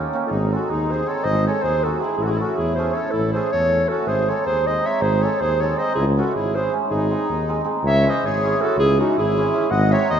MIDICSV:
0, 0, Header, 1, 5, 480
1, 0, Start_track
1, 0, Tempo, 375940
1, 396, Time_signature, 5, 3, 24, 8
1, 13021, End_track
2, 0, Start_track
2, 0, Title_t, "Clarinet"
2, 0, Program_c, 0, 71
2, 344, Note_on_c, 0, 69, 64
2, 398, Note_on_c, 0, 68, 78
2, 417, Note_off_c, 0, 69, 0
2, 672, Note_on_c, 0, 69, 77
2, 692, Note_off_c, 0, 68, 0
2, 897, Note_on_c, 0, 68, 78
2, 917, Note_off_c, 0, 69, 0
2, 1158, Note_on_c, 0, 72, 78
2, 1177, Note_off_c, 0, 68, 0
2, 1380, Note_on_c, 0, 73, 93
2, 1399, Note_off_c, 0, 72, 0
2, 1581, Note_on_c, 0, 75, 116
2, 1600, Note_off_c, 0, 73, 0
2, 1865, Note_off_c, 0, 75, 0
2, 1872, Note_on_c, 0, 73, 89
2, 2068, Note_on_c, 0, 72, 103
2, 2087, Note_off_c, 0, 73, 0
2, 2342, Note_on_c, 0, 69, 86
2, 2361, Note_off_c, 0, 72, 0
2, 2559, Note_on_c, 0, 68, 84
2, 2578, Note_off_c, 0, 69, 0
2, 2768, Note_off_c, 0, 68, 0
2, 2776, Note_on_c, 0, 68, 91
2, 2848, Note_on_c, 0, 69, 77
2, 2868, Note_off_c, 0, 68, 0
2, 2904, Note_on_c, 0, 68, 95
2, 2923, Note_off_c, 0, 69, 0
2, 3029, Note_on_c, 0, 69, 82
2, 3048, Note_off_c, 0, 68, 0
2, 3271, Note_on_c, 0, 68, 100
2, 3290, Note_off_c, 0, 69, 0
2, 3514, Note_off_c, 0, 68, 0
2, 3521, Note_on_c, 0, 72, 85
2, 3753, Note_on_c, 0, 73, 95
2, 3773, Note_off_c, 0, 72, 0
2, 3974, Note_on_c, 0, 69, 112
2, 3993, Note_off_c, 0, 73, 0
2, 4247, Note_off_c, 0, 69, 0
2, 4255, Note_on_c, 0, 72, 81
2, 4480, Note_off_c, 0, 72, 0
2, 4493, Note_on_c, 0, 73, 109
2, 4960, Note_on_c, 0, 69, 94
2, 4980, Note_off_c, 0, 73, 0
2, 5204, Note_on_c, 0, 72, 96
2, 5224, Note_off_c, 0, 69, 0
2, 5481, Note_on_c, 0, 73, 86
2, 5500, Note_off_c, 0, 72, 0
2, 5690, Note_off_c, 0, 73, 0
2, 5698, Note_on_c, 0, 72, 106
2, 5963, Note_on_c, 0, 75, 97
2, 5982, Note_off_c, 0, 72, 0
2, 6201, Note_on_c, 0, 76, 101
2, 6220, Note_off_c, 0, 75, 0
2, 6405, Note_on_c, 0, 72, 116
2, 6424, Note_off_c, 0, 76, 0
2, 6675, Note_on_c, 0, 73, 94
2, 6695, Note_off_c, 0, 72, 0
2, 6903, Note_on_c, 0, 72, 102
2, 6922, Note_off_c, 0, 73, 0
2, 7162, Note_on_c, 0, 73, 90
2, 7181, Note_off_c, 0, 72, 0
2, 7373, Note_on_c, 0, 75, 110
2, 7392, Note_off_c, 0, 73, 0
2, 7588, Note_off_c, 0, 75, 0
2, 7596, Note_on_c, 0, 68, 96
2, 7725, Note_off_c, 0, 68, 0
2, 7886, Note_on_c, 0, 69, 84
2, 8099, Note_on_c, 0, 68, 99
2, 8118, Note_off_c, 0, 69, 0
2, 8367, Note_on_c, 0, 72, 97
2, 8386, Note_off_c, 0, 68, 0
2, 8586, Note_off_c, 0, 72, 0
2, 8823, Note_on_c, 0, 68, 98
2, 9744, Note_off_c, 0, 68, 0
2, 10040, Note_on_c, 0, 76, 118
2, 10339, Note_on_c, 0, 75, 94
2, 10359, Note_off_c, 0, 76, 0
2, 10538, Note_on_c, 0, 73, 96
2, 10557, Note_off_c, 0, 75, 0
2, 10998, Note_on_c, 0, 69, 103
2, 11017, Note_off_c, 0, 73, 0
2, 11208, Note_off_c, 0, 69, 0
2, 11225, Note_on_c, 0, 68, 116
2, 11475, Note_off_c, 0, 68, 0
2, 11497, Note_on_c, 0, 66, 88
2, 11699, Note_off_c, 0, 66, 0
2, 11731, Note_on_c, 0, 68, 112
2, 12394, Note_on_c, 0, 78, 105
2, 12413, Note_off_c, 0, 68, 0
2, 12668, Note_on_c, 0, 76, 94
2, 12687, Note_off_c, 0, 78, 0
2, 12892, Note_off_c, 0, 76, 0
2, 12899, Note_on_c, 0, 75, 113
2, 13021, Note_off_c, 0, 75, 0
2, 13021, End_track
3, 0, Start_track
3, 0, Title_t, "Accordion"
3, 0, Program_c, 1, 21
3, 335, Note_on_c, 1, 65, 53
3, 377, Note_on_c, 1, 63, 70
3, 389, Note_off_c, 1, 65, 0
3, 669, Note_off_c, 1, 63, 0
3, 687, Note_on_c, 1, 66, 65
3, 897, Note_on_c, 1, 63, 68
3, 909, Note_off_c, 1, 66, 0
3, 1144, Note_on_c, 1, 68, 68
3, 1158, Note_off_c, 1, 63, 0
3, 1359, Note_on_c, 1, 69, 78
3, 1372, Note_off_c, 1, 68, 0
3, 1575, Note_on_c, 1, 72, 88
3, 1589, Note_off_c, 1, 69, 0
3, 1857, Note_on_c, 1, 69, 76
3, 1870, Note_off_c, 1, 72, 0
3, 2073, Note_on_c, 1, 68, 81
3, 2080, Note_off_c, 1, 69, 0
3, 2348, Note_off_c, 1, 68, 0
3, 2348, Note_on_c, 1, 66, 69
3, 2546, Note_on_c, 1, 64, 72
3, 2575, Note_off_c, 1, 66, 0
3, 2766, Note_off_c, 1, 64, 0
3, 2785, Note_on_c, 1, 64, 76
3, 2846, Note_on_c, 1, 66, 57
3, 2859, Note_off_c, 1, 64, 0
3, 2919, Note_on_c, 1, 64, 92
3, 2930, Note_off_c, 1, 66, 0
3, 3057, Note_on_c, 1, 66, 78
3, 3073, Note_off_c, 1, 64, 0
3, 3284, Note_on_c, 1, 64, 71
3, 3297, Note_off_c, 1, 66, 0
3, 3534, Note_on_c, 1, 68, 71
3, 3554, Note_off_c, 1, 64, 0
3, 3752, Note_on_c, 1, 69, 77
3, 3753, Note_off_c, 1, 68, 0
3, 3987, Note_off_c, 1, 69, 0
3, 3989, Note_on_c, 1, 64, 78
3, 4263, Note_on_c, 1, 68, 80
3, 4279, Note_off_c, 1, 64, 0
3, 4484, Note_off_c, 1, 68, 0
3, 4504, Note_on_c, 1, 69, 86
3, 4949, Note_off_c, 1, 69, 0
3, 4971, Note_on_c, 1, 66, 78
3, 5192, Note_on_c, 1, 68, 87
3, 5197, Note_off_c, 1, 66, 0
3, 5469, Note_on_c, 1, 69, 78
3, 5481, Note_off_c, 1, 68, 0
3, 5696, Note_on_c, 1, 68, 85
3, 5704, Note_off_c, 1, 69, 0
3, 5942, Note_off_c, 1, 68, 0
3, 5963, Note_on_c, 1, 72, 72
3, 6178, Note_on_c, 1, 73, 83
3, 6184, Note_off_c, 1, 72, 0
3, 6395, Note_on_c, 1, 68, 76
3, 6401, Note_off_c, 1, 73, 0
3, 6656, Note_on_c, 1, 69, 84
3, 6682, Note_off_c, 1, 68, 0
3, 6887, Note_on_c, 1, 68, 89
3, 6897, Note_off_c, 1, 69, 0
3, 7142, Note_on_c, 1, 69, 78
3, 7156, Note_off_c, 1, 68, 0
3, 7372, Note_on_c, 1, 72, 82
3, 7374, Note_off_c, 1, 69, 0
3, 7598, Note_off_c, 1, 72, 0
3, 7599, Note_on_c, 1, 64, 79
3, 7727, Note_off_c, 1, 64, 0
3, 7876, Note_on_c, 1, 66, 79
3, 8091, Note_off_c, 1, 66, 0
3, 8114, Note_on_c, 1, 64, 73
3, 8357, Note_on_c, 1, 68, 70
3, 8369, Note_off_c, 1, 64, 0
3, 8581, Note_off_c, 1, 68, 0
3, 8794, Note_on_c, 1, 63, 73
3, 9729, Note_off_c, 1, 63, 0
3, 10031, Note_on_c, 1, 73, 80
3, 10280, Note_off_c, 1, 73, 0
3, 10306, Note_on_c, 1, 72, 89
3, 10521, Note_off_c, 1, 72, 0
3, 10532, Note_on_c, 1, 68, 96
3, 10994, Note_off_c, 1, 68, 0
3, 11006, Note_on_c, 1, 66, 83
3, 11205, Note_on_c, 1, 64, 84
3, 11212, Note_off_c, 1, 66, 0
3, 11464, Note_off_c, 1, 64, 0
3, 11477, Note_on_c, 1, 63, 71
3, 11688, Note_off_c, 1, 63, 0
3, 11698, Note_on_c, 1, 64, 90
3, 12342, Note_off_c, 1, 64, 0
3, 12397, Note_on_c, 1, 75, 98
3, 12670, Note_on_c, 1, 73, 101
3, 12676, Note_off_c, 1, 75, 0
3, 12898, Note_off_c, 1, 73, 0
3, 12918, Note_on_c, 1, 72, 90
3, 13021, Note_off_c, 1, 72, 0
3, 13021, End_track
4, 0, Start_track
4, 0, Title_t, "Hammered dulcimer"
4, 0, Program_c, 2, 15
4, 168, Note_on_c, 2, 58, 79
4, 177, Note_on_c, 2, 61, 70
4, 186, Note_on_c, 2, 63, 64
4, 196, Note_on_c, 2, 67, 77
4, 300, Note_off_c, 2, 58, 0
4, 304, Note_off_c, 2, 61, 0
4, 309, Note_off_c, 2, 63, 0
4, 314, Note_off_c, 2, 67, 0
4, 668, Note_on_c, 2, 56, 61
4, 674, Note_on_c, 2, 60, 56
4, 684, Note_on_c, 2, 63, 57
4, 698, Note_on_c, 2, 68, 71
4, 808, Note_off_c, 2, 60, 0
4, 813, Note_off_c, 2, 63, 0
4, 820, Note_off_c, 2, 68, 0
4, 1145, Note_off_c, 2, 56, 0
4, 1160, Note_on_c, 2, 56, 61
4, 1169, Note_on_c, 2, 60, 55
4, 1185, Note_on_c, 2, 63, 60
4, 1193, Note_on_c, 2, 68, 71
4, 1293, Note_off_c, 2, 60, 0
4, 1301, Note_off_c, 2, 63, 0
4, 1305, Note_off_c, 2, 68, 0
4, 1348, Note_off_c, 2, 56, 0
4, 1363, Note_on_c, 2, 56, 69
4, 1369, Note_on_c, 2, 60, 59
4, 1379, Note_on_c, 2, 63, 57
4, 1394, Note_on_c, 2, 68, 67
4, 1502, Note_off_c, 2, 60, 0
4, 1507, Note_off_c, 2, 63, 0
4, 1514, Note_off_c, 2, 68, 0
4, 1859, Note_off_c, 2, 56, 0
4, 1874, Note_on_c, 2, 56, 67
4, 1877, Note_on_c, 2, 60, 61
4, 1885, Note_on_c, 2, 63, 58
4, 1898, Note_on_c, 2, 68, 76
4, 2011, Note_off_c, 2, 60, 0
4, 2015, Note_off_c, 2, 63, 0
4, 2022, Note_off_c, 2, 68, 0
4, 2342, Note_off_c, 2, 56, 0
4, 2357, Note_on_c, 2, 56, 63
4, 2366, Note_on_c, 2, 60, 62
4, 2368, Note_on_c, 2, 63, 66
4, 2378, Note_on_c, 2, 68, 70
4, 2493, Note_off_c, 2, 60, 0
4, 2493, Note_off_c, 2, 63, 0
4, 2498, Note_off_c, 2, 68, 0
4, 2562, Note_off_c, 2, 56, 0
4, 2577, Note_on_c, 2, 56, 67
4, 2584, Note_on_c, 2, 60, 65
4, 2602, Note_on_c, 2, 63, 55
4, 2607, Note_on_c, 2, 68, 71
4, 2711, Note_off_c, 2, 60, 0
4, 2720, Note_off_c, 2, 63, 0
4, 2722, Note_off_c, 2, 68, 0
4, 2866, Note_off_c, 2, 56, 0
4, 3074, Note_on_c, 2, 61, 62
4, 3075, Note_on_c, 2, 57, 64
4, 3092, Note_on_c, 2, 64, 66
4, 3102, Note_on_c, 2, 69, 63
4, 3211, Note_off_c, 2, 61, 0
4, 3212, Note_off_c, 2, 57, 0
4, 3220, Note_off_c, 2, 64, 0
4, 3225, Note_off_c, 2, 69, 0
4, 3552, Note_on_c, 2, 57, 65
4, 3557, Note_on_c, 2, 61, 64
4, 3569, Note_on_c, 2, 64, 56
4, 3573, Note_on_c, 2, 69, 72
4, 3687, Note_off_c, 2, 57, 0
4, 3689, Note_off_c, 2, 61, 0
4, 3695, Note_off_c, 2, 64, 0
4, 3697, Note_off_c, 2, 69, 0
4, 3766, Note_on_c, 2, 57, 75
4, 3768, Note_on_c, 2, 61, 58
4, 3783, Note_on_c, 2, 64, 58
4, 3789, Note_on_c, 2, 69, 73
4, 3903, Note_off_c, 2, 57, 0
4, 3904, Note_off_c, 2, 61, 0
4, 3911, Note_off_c, 2, 64, 0
4, 3914, Note_off_c, 2, 69, 0
4, 4275, Note_on_c, 2, 57, 57
4, 4279, Note_on_c, 2, 61, 55
4, 4289, Note_on_c, 2, 64, 58
4, 4292, Note_on_c, 2, 69, 79
4, 4412, Note_off_c, 2, 57, 0
4, 4414, Note_off_c, 2, 61, 0
4, 4419, Note_off_c, 2, 64, 0
4, 4420, Note_off_c, 2, 69, 0
4, 4744, Note_on_c, 2, 57, 61
4, 4751, Note_on_c, 2, 61, 54
4, 4764, Note_on_c, 2, 64, 52
4, 4772, Note_on_c, 2, 69, 69
4, 4883, Note_off_c, 2, 57, 0
4, 4887, Note_off_c, 2, 61, 0
4, 4893, Note_off_c, 2, 64, 0
4, 4897, Note_off_c, 2, 69, 0
4, 4984, Note_on_c, 2, 61, 60
4, 4987, Note_on_c, 2, 57, 59
4, 4995, Note_on_c, 2, 64, 50
4, 5002, Note_on_c, 2, 69, 70
4, 5112, Note_off_c, 2, 61, 0
4, 5114, Note_off_c, 2, 57, 0
4, 5117, Note_off_c, 2, 64, 0
4, 5121, Note_off_c, 2, 69, 0
4, 5469, Note_on_c, 2, 56, 66
4, 5473, Note_on_c, 2, 60, 57
4, 5484, Note_on_c, 2, 63, 54
4, 5496, Note_on_c, 2, 68, 74
4, 5611, Note_off_c, 2, 60, 0
4, 5617, Note_off_c, 2, 63, 0
4, 5623, Note_off_c, 2, 68, 0
4, 5956, Note_off_c, 2, 56, 0
4, 5971, Note_on_c, 2, 56, 68
4, 5974, Note_on_c, 2, 60, 59
4, 5984, Note_on_c, 2, 63, 57
4, 5999, Note_on_c, 2, 68, 70
4, 6098, Note_off_c, 2, 60, 0
4, 6103, Note_off_c, 2, 63, 0
4, 6111, Note_off_c, 2, 68, 0
4, 6173, Note_off_c, 2, 56, 0
4, 6189, Note_on_c, 2, 56, 62
4, 6204, Note_on_c, 2, 60, 53
4, 6212, Note_on_c, 2, 63, 64
4, 6219, Note_on_c, 2, 68, 66
4, 6322, Note_off_c, 2, 60, 0
4, 6326, Note_off_c, 2, 63, 0
4, 6329, Note_off_c, 2, 68, 0
4, 6665, Note_off_c, 2, 56, 0
4, 6681, Note_on_c, 2, 56, 61
4, 6686, Note_on_c, 2, 60, 61
4, 6699, Note_on_c, 2, 63, 58
4, 6705, Note_on_c, 2, 68, 69
4, 6818, Note_off_c, 2, 60, 0
4, 6825, Note_off_c, 2, 63, 0
4, 6827, Note_off_c, 2, 68, 0
4, 7147, Note_off_c, 2, 56, 0
4, 7162, Note_on_c, 2, 56, 71
4, 7173, Note_on_c, 2, 60, 63
4, 7185, Note_on_c, 2, 63, 60
4, 7191, Note_on_c, 2, 68, 82
4, 7297, Note_off_c, 2, 60, 0
4, 7303, Note_off_c, 2, 63, 0
4, 7306, Note_off_c, 2, 68, 0
4, 7378, Note_off_c, 2, 56, 0
4, 7394, Note_on_c, 2, 56, 69
4, 7399, Note_on_c, 2, 60, 59
4, 7411, Note_on_c, 2, 68, 70
4, 7412, Note_on_c, 2, 63, 58
4, 7519, Note_off_c, 2, 60, 0
4, 7526, Note_off_c, 2, 68, 0
4, 7527, Note_off_c, 2, 63, 0
4, 7669, Note_off_c, 2, 56, 0
4, 7877, Note_on_c, 2, 56, 57
4, 7891, Note_on_c, 2, 61, 62
4, 7892, Note_on_c, 2, 64, 65
4, 7904, Note_on_c, 2, 68, 63
4, 8020, Note_off_c, 2, 61, 0
4, 8020, Note_off_c, 2, 64, 0
4, 8027, Note_off_c, 2, 68, 0
4, 8348, Note_off_c, 2, 56, 0
4, 8363, Note_on_c, 2, 56, 65
4, 8375, Note_on_c, 2, 61, 58
4, 8378, Note_on_c, 2, 64, 61
4, 8385, Note_on_c, 2, 68, 74
4, 8499, Note_off_c, 2, 61, 0
4, 8500, Note_off_c, 2, 64, 0
4, 8504, Note_off_c, 2, 68, 0
4, 8557, Note_off_c, 2, 56, 0
4, 8572, Note_on_c, 2, 56, 68
4, 8588, Note_on_c, 2, 61, 54
4, 8594, Note_on_c, 2, 64, 57
4, 8601, Note_on_c, 2, 68, 72
4, 8714, Note_off_c, 2, 61, 0
4, 8717, Note_off_c, 2, 64, 0
4, 8720, Note_off_c, 2, 68, 0
4, 8869, Note_off_c, 2, 56, 0
4, 9075, Note_on_c, 2, 56, 65
4, 9082, Note_on_c, 2, 60, 65
4, 9089, Note_on_c, 2, 63, 55
4, 9096, Note_on_c, 2, 68, 65
4, 9216, Note_off_c, 2, 60, 0
4, 9219, Note_off_c, 2, 63, 0
4, 9222, Note_off_c, 2, 68, 0
4, 9539, Note_off_c, 2, 56, 0
4, 9554, Note_on_c, 2, 56, 76
4, 9562, Note_on_c, 2, 60, 62
4, 9566, Note_on_c, 2, 63, 64
4, 9572, Note_on_c, 2, 68, 83
4, 9691, Note_off_c, 2, 60, 0
4, 9693, Note_off_c, 2, 63, 0
4, 9697, Note_off_c, 2, 68, 0
4, 9744, Note_off_c, 2, 56, 0
4, 9760, Note_on_c, 2, 56, 75
4, 9768, Note_on_c, 2, 60, 68
4, 9768, Note_on_c, 2, 63, 68
4, 9781, Note_on_c, 2, 68, 80
4, 9903, Note_off_c, 2, 60, 0
4, 9903, Note_off_c, 2, 63, 0
4, 9910, Note_off_c, 2, 68, 0
4, 10067, Note_off_c, 2, 56, 0
4, 10274, Note_on_c, 2, 52, 72
4, 10274, Note_on_c, 2, 56, 59
4, 10285, Note_on_c, 2, 61, 59
4, 10287, Note_on_c, 2, 64, 64
4, 10298, Note_on_c, 2, 68, 68
4, 10416, Note_off_c, 2, 61, 0
4, 10417, Note_off_c, 2, 64, 0
4, 10423, Note_off_c, 2, 68, 0
4, 10759, Note_off_c, 2, 52, 0
4, 10762, Note_off_c, 2, 56, 0
4, 10774, Note_on_c, 2, 52, 75
4, 10777, Note_on_c, 2, 56, 53
4, 10781, Note_on_c, 2, 61, 64
4, 10793, Note_on_c, 2, 64, 53
4, 10793, Note_on_c, 2, 68, 76
4, 10900, Note_off_c, 2, 61, 0
4, 10905, Note_off_c, 2, 68, 0
4, 10906, Note_off_c, 2, 64, 0
4, 10966, Note_off_c, 2, 52, 0
4, 10976, Note_off_c, 2, 56, 0
4, 10980, Note_on_c, 2, 52, 65
4, 10986, Note_on_c, 2, 61, 59
4, 10991, Note_on_c, 2, 56, 60
4, 11000, Note_on_c, 2, 64, 70
4, 11003, Note_on_c, 2, 68, 84
4, 11111, Note_off_c, 2, 61, 0
4, 11118, Note_off_c, 2, 64, 0
4, 11119, Note_off_c, 2, 68, 0
4, 11460, Note_off_c, 2, 52, 0
4, 11465, Note_off_c, 2, 56, 0
4, 11475, Note_on_c, 2, 52, 65
4, 11480, Note_on_c, 2, 56, 62
4, 11486, Note_on_c, 2, 61, 56
4, 11495, Note_on_c, 2, 64, 66
4, 11500, Note_on_c, 2, 68, 72
4, 11614, Note_off_c, 2, 61, 0
4, 11619, Note_off_c, 2, 64, 0
4, 11621, Note_off_c, 2, 68, 0
4, 11954, Note_off_c, 2, 52, 0
4, 11954, Note_off_c, 2, 56, 0
4, 11968, Note_on_c, 2, 52, 71
4, 11970, Note_on_c, 2, 56, 63
4, 11977, Note_on_c, 2, 61, 62
4, 11982, Note_on_c, 2, 64, 65
4, 11991, Note_on_c, 2, 68, 84
4, 12095, Note_off_c, 2, 61, 0
4, 12098, Note_off_c, 2, 64, 0
4, 12102, Note_off_c, 2, 68, 0
4, 12156, Note_off_c, 2, 56, 0
4, 12163, Note_off_c, 2, 52, 0
4, 12171, Note_on_c, 2, 56, 68
4, 12177, Note_on_c, 2, 52, 69
4, 12181, Note_on_c, 2, 61, 68
4, 12193, Note_on_c, 2, 64, 66
4, 12196, Note_on_c, 2, 68, 75
4, 12306, Note_off_c, 2, 61, 0
4, 12312, Note_off_c, 2, 64, 0
4, 12313, Note_off_c, 2, 68, 0
4, 12459, Note_off_c, 2, 52, 0
4, 12459, Note_off_c, 2, 56, 0
4, 12672, Note_on_c, 2, 51, 63
4, 12678, Note_on_c, 2, 56, 61
4, 12682, Note_on_c, 2, 60, 61
4, 12682, Note_on_c, 2, 63, 64
4, 12688, Note_on_c, 2, 68, 76
4, 12808, Note_off_c, 2, 63, 0
4, 12809, Note_off_c, 2, 60, 0
4, 12812, Note_off_c, 2, 68, 0
4, 13021, Note_off_c, 2, 51, 0
4, 13021, Note_off_c, 2, 56, 0
4, 13021, End_track
5, 0, Start_track
5, 0, Title_t, "Tuba"
5, 0, Program_c, 3, 58
5, 395, Note_on_c, 3, 32, 113
5, 701, Note_off_c, 3, 32, 0
5, 891, Note_on_c, 3, 39, 82
5, 1312, Note_off_c, 3, 39, 0
5, 1584, Note_on_c, 3, 32, 116
5, 1895, Note_off_c, 3, 32, 0
5, 2090, Note_on_c, 3, 39, 86
5, 2512, Note_off_c, 3, 39, 0
5, 2779, Note_on_c, 3, 33, 95
5, 3091, Note_off_c, 3, 33, 0
5, 3299, Note_on_c, 3, 40, 85
5, 3719, Note_off_c, 3, 40, 0
5, 4002, Note_on_c, 3, 33, 96
5, 4308, Note_off_c, 3, 33, 0
5, 4517, Note_on_c, 3, 40, 85
5, 4931, Note_off_c, 3, 40, 0
5, 5190, Note_on_c, 3, 32, 94
5, 5499, Note_off_c, 3, 32, 0
5, 5699, Note_on_c, 3, 39, 72
5, 6118, Note_off_c, 3, 39, 0
5, 6397, Note_on_c, 3, 32, 108
5, 6704, Note_off_c, 3, 32, 0
5, 6906, Note_on_c, 3, 39, 90
5, 7323, Note_off_c, 3, 39, 0
5, 7613, Note_on_c, 3, 37, 117
5, 7915, Note_off_c, 3, 37, 0
5, 8116, Note_on_c, 3, 32, 77
5, 8530, Note_off_c, 3, 32, 0
5, 8811, Note_on_c, 3, 32, 95
5, 9114, Note_off_c, 3, 32, 0
5, 9308, Note_on_c, 3, 39, 84
5, 9724, Note_off_c, 3, 39, 0
5, 9998, Note_on_c, 3, 37, 114
5, 10304, Note_off_c, 3, 37, 0
5, 10507, Note_on_c, 3, 32, 85
5, 10922, Note_off_c, 3, 32, 0
5, 11187, Note_on_c, 3, 37, 114
5, 11495, Note_off_c, 3, 37, 0
5, 11714, Note_on_c, 3, 32, 99
5, 12125, Note_off_c, 3, 32, 0
5, 12399, Note_on_c, 3, 32, 127
5, 12701, Note_off_c, 3, 32, 0
5, 12914, Note_on_c, 3, 39, 85
5, 13021, Note_off_c, 3, 39, 0
5, 13021, End_track
0, 0, End_of_file